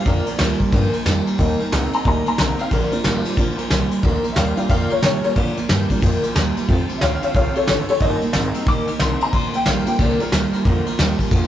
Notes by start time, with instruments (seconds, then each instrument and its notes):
0.06 upright bass F2, steel-string acoustic guitar A#2 D3 F3 A#3 D4 A#4, clean electric guitar A#2 F3, honky-tonk piano F3 A#3 D4 A#4 D5, kick, ride
0.26 clean electric guitar A#2 F3, steel-string acoustic guitar F3 A#3 D4 A#4, muted upright bass stroke, ride
0.39 upright bass D2, clean electric guitar A#2 G3, steel-string acoustic guitar F3 A#3 D4 A#4, snare, ride
0.60 clean electric guitar A#2 G3, steel-string acoustic guitar F3 A#3 D4 A#4, kick, ride
0.72 upright bass G2, steel-string acoustic guitar A#2 D3 F3 A#3 D4 A#4, clean electric guitar A#2 F3, honky-tonk piano F3 A#3 D4, kick, ride
0.92 clean electric guitar A#2 F3, steel-string acoustic guitar F3 A#3 D4 A#4, muted upright bass stroke, ride
1.05 upright bass F2, clean electric guitar A#2 G3, steel-string acoustic guitar F3 A#3 D4 A#4, snare, ride
1.26 clean electric guitar A#2 G3, steel-string acoustic guitar F3 A#3 D4 A#4, muted upright bass stroke, ride
1.38 upright bass D#2, steel-string acoustic guitar D#3 G3 A#3 D#4 A#4, clean electric guitar D#3 A#3, honky-tonk piano G3 A#3 D#4, kick, ride
1.59 clean electric guitar D#3 A#3, steel-string acoustic guitar A#3 D#4 A#4, ride
1.72 upright bass C#2, clean electric guitar D#3 C4, steel-string acoustic guitar G3 A#3 D#4 A#4, snare, ride
1.92 clean electric guitar D#3 C4, steel-string acoustic guitar A#3 D#4 A#4, honky-tonk piano A#5, muted upright bass stroke, ride
2.05 upright bass D2, steel-string acoustic guitar D#3 G3 A#3 D#4 A#4, clean electric guitar D#3 A#3, honky-tonk piano G3 A#3 D#4 A#5, kick, ride
2.25 clean electric guitar D#3 A#3, steel-string acoustic guitar A#3 D#4 A#4, honky-tonk piano A#5, muted upright bass stroke, ride
2.38 upright bass C2, clean electric guitar D#3 C4, steel-string acoustic guitar G3 A#3 D#4 A#4, honky-tonk piano A#5, snare, ride
2.59 clean electric guitar D#3 C4, steel-string acoustic guitar A#3 D#4 A#4, honky-tonk piano F5, muted upright bass stroke, ride
2.71 upright bass A#1, steel-string acoustic guitar A#2 D3 F3 A#3 D4 A#4, clean electric guitar A#2 F3, honky-tonk piano A#4 D5, kick, ride
2.91 clean electric guitar A#2 F3, honky-tonk piano F3 A#3 D4, steel-string acoustic guitar F3 A#3 D4 A#4, muted upright bass stroke, ride
3.04 upright bass G#1, clean electric guitar A#2 G3, steel-string acoustic guitar F3 A#3 D4 A#4, snare, ride
3.25 clean electric guitar A#2 G3, steel-string acoustic guitar F3 A#3 D4 A#4, muted upright bass stroke, ride
3.37 upright bass A#1, clean electric guitar A#2 F3, steel-string acoustic guitar A#2 D3 F3 A#3 D4 A#4, honky-tonk piano F3 A#3 D4, kick, ride
3.57 clean electric guitar A#2 F3, steel-string acoustic guitar F3 A#3 D4 A#4, muted upright bass stroke, ride
3.70 upright bass C2, clean electric guitar A#2 G3, steel-string acoustic guitar F3 A#3 D4 A#4, snare, ride
3.91 clean electric guitar A#2 G3, steel-string acoustic guitar F3 A#3 D4 A#4, muted upright bass stroke, ride
4.03 upright bass D2, clean electric guitar A#2 F3, steel-string acoustic guitar A#2 D3 F3 A#3 D4 A#4, kick, ride
4.23 clean electric guitar A#2 F3, steel-string acoustic guitar F3 A#3 D4 A#4, muted upright bass stroke, ride
4.32 upright bass D#2, clean electric guitar A#2, steel-string acoustic guitar F3, honky-tonk piano D5 E5, snare, ride
4.37 clean electric guitar G3, steel-string acoustic guitar A#3 D4 A#4, honky-tonk piano F5
4.56 clean electric guitar A#2 G3, honky-tonk piano F3 A#3 D4 D5 F5, steel-string acoustic guitar F3 A#3 D4 A#4, ride
4.69 upright bass F2, steel-string acoustic guitar A#2 D3 F3 A#3 D4 A#4, clean electric guitar F3, honky-tonk piano D5 F5, kick, ride
4.90 clean electric guitar A#2 F3, steel-string acoustic guitar F3 A#3 D4 A#4, honky-tonk piano A#4 C#5, muted upright bass stroke, ride
5.02 clean electric guitar A#2 G3, upright bass C3, steel-string acoustic guitar F3 A#3 D4 A#4, honky-tonk piano A#4 C#5, snare, ride
5.24 clean electric guitar A#2 G3, steel-string acoustic guitar F3 A#3 D4 A#4, honky-tonk piano A#4 C#5, muted upright bass stroke, ride
5.35 clean electric guitar A#2 F3, steel-string acoustic guitar A#2 D3 F3 A#3 D4 A#4, upright bass A#2, honky-tonk piano F3 A#3 D4 D5, kick, ride
5.57 clean electric guitar A#2 F3, steel-string acoustic guitar F3 A#3 D4 A#4, muted upright bass stroke, ride
5.69 upright bass G2, clean electric guitar A#2 G3, steel-string acoustic guitar F3 A#3 D4 A#4, snare, ride
5.90 clean electric guitar A#2 G3, honky-tonk piano F3 A#3 D4, steel-string acoustic guitar F3 A#3 D4 A#4, kick, ride
6.02 upright bass F2, clean electric guitar A#2 F3, steel-string acoustic guitar A#2 D3 F3 A#3 D4 A#4, kick, ride
6.23 clean electric guitar A#2 F3, steel-string acoustic guitar F3 A#3 D4 A#4, muted upright bass stroke, ride
6.35 upright bass D#2, clean electric guitar A#2 G3, steel-string acoustic guitar F3 A#3 D4 A#4, snare, ride
6.56 clean electric guitar A#2 G3, steel-string acoustic guitar F3 A#3 D4 A#4, ride
6.68 clean electric guitar F2 C3, upright bass F2, honky-tonk piano F3 A3 C4, steel-string acoustic guitar F3 C4 F4 A4, kick, ride
6.89 clean electric guitar F2 C3, steel-string acoustic guitar C4 F4 A4, muted upright bass stroke, ride
6.98 upright bass D2, clean electric guitar F2, steel-string acoustic guitar F3 C4, honky-tonk piano C#5 E5, snare, ride
7.02 clean electric guitar D3, steel-string acoustic guitar F4 A4, honky-tonk piano F5
7.22 clean electric guitar F2 D3, steel-string acoustic guitar C4 F4 A4, honky-tonk piano C#5 F5, muted upright bass stroke, ride
7.34 upright bass C2, clean electric guitar F2 C3, steel-string acoustic guitar F3 C4 F4 A4, honky-tonk piano C#5 F5, kick, ride
7.55 clean electric guitar F2 C3, steel-string acoustic guitar C4 F4 A4, honky-tonk piano A4 C#5, ride
7.67 upright bass A1, clean electric guitar F2 D3, steel-string acoustic guitar F3 C4 F4, honky-tonk piano A4 C#5, snare, ride
7.88 clean electric guitar F2 D3, steel-string acoustic guitar C4 F4 A4, honky-tonk piano A4 C#5, muted upright bass stroke, ride
8.00 upright bass G1, honky-tonk piano D#3 G3 A#3 D#5, steel-string acoustic guitar D#3 G3 A#3 D#4 A#4, clean electric guitar D#3 A#3, kick, ride
8.21 clean electric guitar D#3 A#3, steel-string acoustic guitar A#3 D#4 A#4, muted upright bass stroke, ride
8.33 upright bass G#1, clean electric guitar D#3 C4, steel-string acoustic guitar G3 A#3 D#4 A#4, snare, ride
8.54 honky-tonk piano D#3 G3 A#3, clean electric guitar D#3 C4, steel-string acoustic guitar A#3 D#4 A#4, muted upright bass stroke, ride
8.66 clean electric guitar D#3 A#3, steel-string acoustic guitar D#3 G3 A#3 D#4 A#4, honky-tonk piano D6, kick, ride
8.87 clean electric guitar D#3 A#3, steel-string acoustic guitar A#3 D#4 A#4, muted upright bass stroke, ride
9.00 upright bass C2, clean electric guitar D#3 C4, steel-string acoustic guitar G3 A#3 D#4 A#4, honky-tonk piano C6, snare, ride
9.20 clean electric guitar D#3 C4, steel-string acoustic guitar A#3 D#4 A#4, honky-tonk piano A#5, ride
9.33 upright bass D2, steel-string acoustic guitar A#2 D3 F3 A#3 D4 A#4, clean electric guitar A#2 F3, honky-tonk piano C6, kick, ride
9.53 clean electric guitar A#2 F3, steel-string acoustic guitar F3 A#3 D4 A#4, honky-tonk piano G5, ride
9.66 upright bass A#1, clean electric guitar A#2 G3, steel-string acoustic guitar F3 A#3 D4 A#4, honky-tonk piano F5, snare, ride
9.86 clean electric guitar A#2 G3, honky-tonk piano D3 F3 A#3 G5, steel-string acoustic guitar F3 A#3 D4 A#4, muted upright bass stroke, ride
9.99 upright bass C2, steel-string acoustic guitar A#2 D3 F3 A#3 D4 A#4, clean electric guitar A#2 F3, honky-tonk piano D5, kick, ride
10.20 clean electric guitar A#2 F3, steel-string acoustic guitar F3 A#3 D4 A#4, honky-tonk piano A#4, ride
10.32 upright bass D2, clean electric guitar A#2 G3, steel-string acoustic guitar F3 A#3 D4 A#4, snare, ride
10.52 clean electric guitar A#2 G3, steel-string acoustic guitar F3 A#3 D4 A#4, muted upright bass stroke, ride
10.65 upright bass F2, clean electric guitar A#2 F3, steel-string acoustic guitar A#2 D3 F3 A#3 D4 A#4, honky-tonk piano D3 F3 A#3, kick, ride
10.86 clean electric guitar A#2 F3, steel-string acoustic guitar F3 A#3 D4 A#4, muted upright bass stroke, ride
10.98 upright bass D#2, clean electric guitar A#2 G3, steel-string acoustic guitar F3 A#3 D4 A#4, snare, ride
11.18 clean electric guitar A#2 G3, steel-string acoustic guitar F3 A#3 D4 A#4, kick, ride
11.31 upright bass F2, clean electric guitar A#2 F3, steel-string acoustic guitar A#2 D3 F3 A#3 D4 A#4, honky-tonk piano D3 F3 A#3, kick, ride